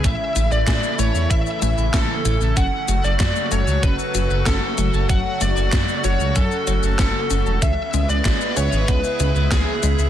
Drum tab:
HH |x-x-x-x-x-x-x-x-|x-x-x-x-x-x-x-x-|x-x-x-x-x-x-x-x-|x-x-x-x-x-x-x-x-|
SH |x-xxxxxxxxxxx-xx|x-xxxxxxxxxxx-xx|x-xxxxxxxxxxx-xx|x-xxxxxxxxxxx-xx|
CP |----x-------x---|----x-------x---|----x-------x---|----x-------x---|
SD |----o-------o---|----o-------o---|----o-------o---|----o-------o---|
BD |o---o---o---o---|o---o---o---o---|o---o---o---o---|o---o---o---o---|